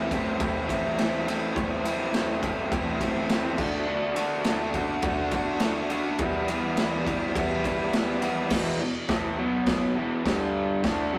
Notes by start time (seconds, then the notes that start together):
Already playing: E3 A3 C4 E4
0.11 A2 E3 A3 C4 E4, kick, ride
0.39 A2 E3 A3 C4 E4, kick, ride
0.69 A2 E3 A3 C4 E4, kick, ride
0.98 A2 E3 A3 C4 E4, snare, ride
1.26 A2 E3 A3 C4 E4, ride
1.55 A2 E3 A3 C4 E4, kick, ride
1.84 A2 E3 A3 C4 E4, ride
2.13 A2 E3 A3 C4 E4, snare, ride
2.41 A2 E3 A3 C4 E4, kick, ride
2.70 A2 E3 A3 C4 E4, kick, ride
3.01 A2 E3 A3 C4 E4, kick, ride
3.29 A2 E3 A3 C4 E4, snare, ride
3.58 D3 A3 D4 F#4, kick, crash
3.87 D3 A3 D4 F#4
4.15 D3 A3 D4 F#4, ride
4.44 D3 A3 D4 F#4, snare, ride
4.74 D3 A3 D4 F#4, kick, ride
5.02 D3 A3 D4 F#4, kick, ride
5.31 D3 A3 D4, kick, ride
5.36 F#4
5.60 D3 A3 D4, snare, ride
5.64 F#4
5.90 D3 A3 D4 F#4, ride
6.18 E3 G3 B3 E4, kick, ride
6.48 E3 G3 B3 E4, ride
6.77 E3 G3 B3 E4, snare, ride
7.06 E3 G3 B3 E4, kick, ride
7.35 E3 G3 B3 E4, kick, ride
7.64 E3 G3 B3 E4, kick, ride
7.93 E3 G3 B3 E4, snare, ride
8.22 E3 G3 B3 E4, ride
8.50 E2 B2 E3, kick, snare, crash
8.81 E2 B2
9.09 A2 E3 A3, kick, snare, crash
9.38 B2 F#3 B3
9.66 kick, snare, crash
9.95 E2 B2 E3
10.24 G2 D3 G3, kick, snare, crash
10.83 D3 A3 D4, kick, snare, crash
11.12 F#2 C#3 F#3